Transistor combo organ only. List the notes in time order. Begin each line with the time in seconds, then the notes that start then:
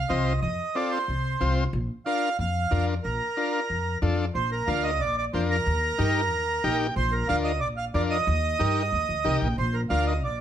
0.09 C4 F4 C5
0.75 C4 F4 A4
1.40 C4 F4 C5
2.06 D4 F4 A#4
2.71 D4 F4 A#4
3.37 D4 F4 A#4
4.02 D4 F4 A4
4.68 D4 F4 A#4
5.34 D4 F4 A#4
5.98 D#4 G4 A#4
6.64 D#4 G4 A#4 G5
7.29 D4 F4 A#4
7.94 D4 F4 A#4
8.59 D#4 G4 A#4
9.24 D#4 G4 A#4 D#5
9.41 G5
9.90 D4 F4 A#4